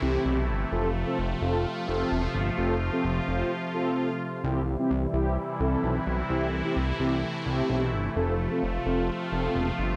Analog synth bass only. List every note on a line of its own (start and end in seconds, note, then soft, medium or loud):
0.02 0.18 C2 loud
0.25 0.50 B1 loud
0.49 0.65 G1 loud
0.72 1.04 F1 loud
1.18 1.34 F1 loud
1.42 1.66 F1 loud
1.88 2.04 F1 loud
2.11 2.28 E1 loud
2.35 2.51 G1 medium
2.58 2.90 F1 loud
3.04 3.21 F1 loud
3.28 3.44 F1 loud
4.44 4.76 C2 loud
4.90 5.07 C2 loud
5.13 5.38 C2 loud
5.60 5.76 C2 loud
5.83 6.00 B1 loud
6.07 6.23 B1 loud
6.30 6.62 C2 loud
6.76 6.93 C2 loud
7.00 7.24 C2 loud
7.46 7.62 C2 loud
7.69 7.94 B1 loud
7.93 8.09 G1 medium
8.16 8.49 F1 loud
8.62 8.79 F1 loud
8.86 9.10 F1 loud
9.32 9.49 F1 loud
9.55 9.72 E1 loud
9.79 9.95 G1 medium